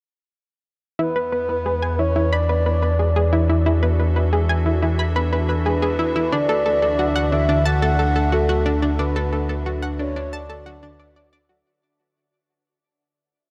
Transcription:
0.99 6.29 E2 medium
0.99 6.33 E3 medium
0.99 11.67 D4 medium
0.99 1.11 E4 loud
0.99 2.01 B4 loud
0.99 11.67 E5 medium
1.16 1.28 B4 medium
1.32 1.44 B4 medium
1.44 11.66 D4 medium
1.49 1.56 B4 medium
1.66 1.73 G#4 medium
1.73 11.66 F#4 medium
1.82 1.94 G#5 loud
1.96 2.15 E4 medium
1.96 2.34 C#5 loud
1.96 11.66 E5 medium
2.16 2.28 E4 medium
2.33 3.33 D5 medium
2.33 2.44 B5 medium
2.40 7.92 A4 medium
2.49 2.61 B4 medium
2.66 2.78 B4 medium
2.83 2.90 B4 medium
2.99 3.06 G#4 medium
3.16 3.28 G#4 loud
3.33 3.44 E4 loud
3.49 3.61 E4 loud
3.66 3.78 E4 loud
3.83 3.94 B4 loud
4.00 4.11 B4 medium
4.16 4.23 B4 medium
4.33 4.40 G#4 medium
4.49 4.61 G#5 loud
4.66 4.81 E4 medium
4.82 4.94 E4 medium
4.99 5.11 B5 loud
5.16 5.28 B4 loud
5.33 5.44 B4 medium
5.49 5.56 B4 medium
5.66 5.73 G#4 medium
5.66 6.34 B4 medium
5.82 5.94 G#4 medium
5.99 6.11 E4 medium
6.16 6.27 E4 medium
6.32 11.63 D2 medium
6.32 11.66 D3 medium
6.32 6.44 D4 loud
6.32 7.34 D5 loud
6.49 6.61 A4 loud
6.66 6.77 A4 medium
6.82 6.89 A4 medium
6.99 7.06 F#4 medium
7.16 7.27 F#5 loud
7.32 7.48 D4 medium
7.32 7.68 E5 loud
7.49 7.61 D4 loud
7.66 8.35 F#5 loud
7.66 7.77 A5 medium
7.82 7.94 A4 medium
7.99 8.11 A4 medium
8.16 8.23 A4 medium
8.32 8.39 F#4 medium
8.32 9.01 A4 medium
8.49 8.61 F#4 loud
8.66 8.77 D4 loud
8.82 8.94 D4 loud
8.99 9.11 D4 loud
8.99 9.66 B4 medium
9.16 9.28 A4 loud
9.33 9.44 A4 medium
9.49 9.56 A4 medium
9.66 9.73 F#4 medium
9.82 9.94 F#5 loud
9.99 10.15 D4 medium
9.99 10.34 C#5 loud
10.16 10.28 D4 medium
10.33 11.33 D5 loud
10.33 10.44 A5 loud
10.50 10.61 A4 loud
10.66 10.82 F#4 loud
10.83 10.99 D4 loud
11.00 11.15 D5 medium
11.16 11.23 D5 medium
11.33 11.40 D5 loud
11.49 11.56 F#4 medium

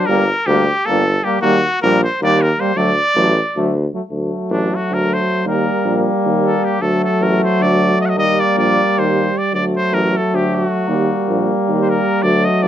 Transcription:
0.06 0.30 G1 medium
0.06 0.23 G3 medium
0.06 0.25 A#3 medium
0.06 0.48 A#4 loud
0.46 0.69 D2 loud
0.46 0.64 G3 medium
0.46 0.64 A#3 medium
0.46 0.87 G4 loud
0.85 1.18 G1 medium
0.85 1.03 G3 medium
0.85 1.02 A#3 medium
0.85 1.25 A4 loud
1.24 1.40 G3 medium
1.24 1.40 A#3 medium
1.24 1.41 G4 medium
1.41 1.64 D#2 medium
1.41 1.58 G3 medium
1.41 1.57 A#3 medium
1.41 1.79 F#4 loud
1.82 2.05 A#1 loud
1.82 1.99 G3 medium
1.82 1.98 A#3 medium
1.82 2.03 A#4 loud
2.04 2.21 C5 medium
2.21 2.52 D#2 loud
2.21 2.37 G3 medium
2.21 2.37 A#3 medium
2.21 2.43 D5 loud
2.42 2.61 A#4 medium
2.59 2.75 G3 medium
2.59 2.75 A#3 medium
2.59 2.79 C5 medium
2.76 2.98 D2 medium
2.76 2.92 F#3 medium
2.76 2.92 A3 medium
2.76 3.77 D5 loud
3.16 3.38 A1 loud
3.16 3.32 F#3 medium
3.16 3.33 A3 medium
3.56 3.87 D2 medium
3.56 3.71 F#3 medium
3.56 3.72 A3 medium
3.94 4.01 F#3 soft
3.94 4.02 A3 soft
4.11 4.33 D2 medium
4.11 5.47 F#3 medium
4.11 5.47 A3 medium
4.50 4.73 A1 medium
4.50 4.76 D4 medium
4.75 4.95 F#4 medium
4.90 5.21 D2 medium
4.90 5.15 A#4 medium
5.13 5.47 C5 loud
5.45 5.68 D#2 medium
5.45 6.81 G3 medium
5.45 6.81 A#3 medium
5.45 6.06 A#4 medium
5.85 6.08 A#1 medium
6.25 6.56 D#2 medium
6.46 6.66 A4 medium
6.64 6.83 G4 medium
6.81 7.03 D2 medium
6.81 8.18 F#3 medium
6.81 8.19 A3 medium
6.81 7.04 A4 medium
7.04 7.24 A4 medium
7.21 7.43 A1 medium
7.21 7.43 A#4 medium
7.44 7.63 C5 medium
7.61 7.92 D2 medium
7.61 8.00 D5 loud
8.01 8.07 D#5 medium
8.05 8.18 D#5 medium
8.05 8.11 F#5 medium
8.16 8.39 D#2 medium
8.16 9.55 G3 medium
8.16 9.39 A#3 medium
8.16 8.41 D#5 loud
8.40 8.58 D5 medium
8.57 8.80 A#1 medium
8.57 9.00 D5 loud
8.98 9.28 D#2 medium
8.98 9.39 C5 medium
9.38 9.54 D5 medium
9.53 9.75 D2 medium
9.53 10.89 F#3 medium
9.53 10.89 A3 medium
9.53 9.64 D5 medium
9.77 9.95 C5 medium
9.92 10.15 A1 medium
9.92 10.18 A#4 medium
10.17 10.36 A4 medium
10.33 10.64 D2 medium
10.33 10.56 G4 medium
10.55 11.52 F#4 medium
10.88 11.11 D#2 medium
10.88 12.25 G3 medium
10.88 12.26 A#3 medium
11.28 11.50 A#1 medium
11.68 11.99 D#2 medium
11.82 11.91 C5 medium
11.89 12.24 A#4 medium
12.22 12.46 D2 medium
12.22 12.68 F#3 medium
12.22 12.68 A3 medium
12.22 12.46 D5 medium
12.45 12.64 D#5 medium
12.63 12.68 A1 medium
12.63 12.68 D5 medium

